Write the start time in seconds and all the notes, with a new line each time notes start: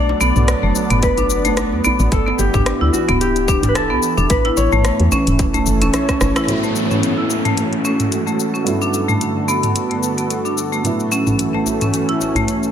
Already playing: B1 F#3 A3 B3 D4 A4 D5
0.09 djembe slap
0.21 B1 B3, djembe slap, cabasa
0.36 B1, mid tom, cabasa
0.48 cross-stick, closed hi-hat, cabasa
0.63 F#1 A3
0.75 djembe tone, cabasa
0.90 F#1 B3, closed hi-hat, mid tom, cabasa
1.03 B4, kick, closed hi-hat, cabasa
1.18 D4, closed hi-hat, djembe bass, cabasa
1.30 cabasa
1.45 A3, closed hi-hat, djembe tone, cabasa
1.57 cross-stick, closed hi-hat, djembe tone, cabasa
1.72 E2, djembe slap
1.84 B3, djembe tone, djembe bass, cabasa
2.00 A1, djembe slap, cabasa
2.12 G1 E3 A4, kick, closed hi-hat, cabasa
2.26 B3, djembe slap
2.39 G1 G4, djembe slap, cabasa
2.54 G1 D4, kick, mid tom, djembe tone, cabasa
2.66 cross-stick, closed hi-hat, cabasa
2.81 D2 E4
2.93 F#4, djembe tone, cabasa
3.08 D1 B3 G4, kick, closed hi-hat, mid tom, cabasa
3.21 G4, closed hi-hat, cabasa
3.36 closed hi-hat, djembe slap, cabasa
3.48 D4, kick, cabasa
3.63 closed hi-hat, mid tom, djembe slap, djembe bass, cabasa
3.69 B4
3.75 A4, cross-stick, closed hi-hat, cabasa
3.90 B1 B3
4.03 cabasa
4.17 E1 D4, djembe slap, cabasa
4.30 A1 B4, kick, closed hi-hat, cabasa
4.45 E4, closed hi-hat, djembe slap
4.57 A1 C#5, djembe slap, cabasa
4.68 A3
4.72 A1 A3, mid tom, djembe tone, cabasa
4.85 cross-stick, closed hi-hat, cabasa
5.00 E2, closed hi-hat
5.11 C#4, djembe tone, djembe bass, cabasa
5.27 E1 A4 C#5, closed hi-hat, mid tom, cabasa
5.39 kick, closed hi-hat, cabasa
5.54 A3, closed hi-hat, djembe bass, cabasa
5.66 F#1, djembe slap, cabasa
5.82 E1 C#4, closed hi-hat, djembe tone, cabasa
5.94 cross-stick, closed hi-hat, djembe tone, cabasa
6.09 C#4, kick, cross-stick, closed hi-hat, djembe slap, cabasa
6.21 F#1, cross-stick, djembe bass, cabasa
6.36 E4, cross-stick, closed hi-hat, djembe slap, cabasa
6.47 A2 F#3 B3 E4, closed hi-hat, downlifter, cabasa
6.63 A3, cabasa
6.76 cabasa
6.90 C#4, mid tom, cabasa
7.03 closed hi-hat, cabasa
7.18 E4
7.30 F#4, cabasa
7.45 A3, closed hi-hat, mid tom, cabasa
7.57 closed hi-hat, cabasa
7.73 closed hi-hat
7.85 C#4, cabasa
8.00 closed hi-hat, mid tom, cabasa
8.12 closed hi-hat, cabasa
8.27 A3, cabasa
8.40 cabasa
8.54 C#4, cabasa
8.64 G2 D3 F#3 B3, closed hi-hat, cabasa
8.69 E4
8.82 D4, cabasa
8.94 cabasa
9.09 A3, mid tom, cabasa
9.21 closed hi-hat, cabasa
9.30 B3
9.48 B3, cabasa
9.63 closed hi-hat, mid tom, cabasa
9.76 closed hi-hat, cabasa
9.91 A3, closed hi-hat
10.03 cabasa
10.18 B3, closed hi-hat, cabasa
10.30 closed hi-hat, cabasa
10.45 D4, cabasa
10.58 cabasa
10.72 A3, cabasa
10.83 A2 E3 F#3 B3 E4, closed hi-hat, cabasa
11.00 cabasa
11.12 A3 C#4, cabasa
11.27 C#4, mid tom, djembe tone, cabasa
11.39 closed hi-hat, cabasa
11.54 A3, djembe slap
11.66 djembe slap, djembe tone, cabasa
11.81 C#4, closed hi-hat, mid tom, cabasa
11.94 closed hi-hat, cabasa
12.09 E4, closed hi-hat
12.21 djembe slap, cabasa
12.35 A3, closed hi-hat, mid tom, djembe bass, cabasa
12.48 closed hi-hat, cabasa
12.63 cabasa